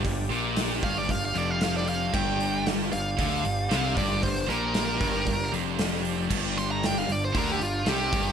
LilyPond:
<<
  \new Staff \with { instrumentName = "Lead electric guitar" } { \time 4/4 \key g \minor \tempo 4 = 115 r4. f''16 d''16 f''16 f''16 d''16 f''16 f''16 d''16 f''8 | g''4 r8 f''2 d''8 | c''8 bes'2 r4. | r8 c'''16 bes''16 g''16 f''16 d''16 c''16 bes'16 g'16 f'8 g'4 | }
  \new Staff \with { instrumentName = "Tonewheel organ" } { \time 4/4 \key g \minor <g d' g'>1~ | <g d' g'>1~ | <g d' g'>1~ | <g d' g'>1 | }
  \new Staff \with { instrumentName = "Distorted electric guitar" } { \clef bass \time 4/4 \key g \minor g,8 bes,4 g,8 g,8 f,4. | g,4. g,8 d8 g,8 c8 g,8 | g,8 bes,4 g,8 g,8 f,4. | g,4. g,8 d8 g,8 c8 g,8 | }
  \new Staff \with { instrumentName = "Distorted electric guitar" } { \clef bass \time 4/4 \key g \minor g,8 bes,4 g,8 g,8 f,4. | g,4. g,8 d8 g,8 c8 g,8 | g,8 bes,4 g,8 g,8 f,4. | g,4. g,8 d8 g,8 c8 g,8 | }
  \new Staff \with { instrumentName = "Picked electric bass" } { \clef bass \time 4/4 \key g \minor g,,8 bes,,4 g,,8 g,,8 f,,4. | g,,4. g,,8 d,8 g,,8 c,8 g,,8 | g,,8 bes,,4 g,,8 g,,8 f,,4. | g,,4. g,,8 d,8 g,,8 c,8 g,,8 | }
  \new DrumStaff \with { instrumentName = "Drums" } \drummode { \time 4/4 <hho bd>8 hho8 <hho sn>8 <hho bd>8 <hho bd>8 hho8 <hho sn>8 hho8 | <cymc bd>8 hho8 <hho sn>8 hho8 <hho bd>8 hho8 <hho sn>8 <hho bd>8 | <hho bd>8 <hho sn>8 <hho sn>8 <hho bd>8 <hho bd>8 hho8 <hho sn>8 hho8 | <cymc bd>8 <hho sn>8 <hho sn>8 hho8 <hho bd>8 hho8 <hho sn>8 <hho bd>8 | }
>>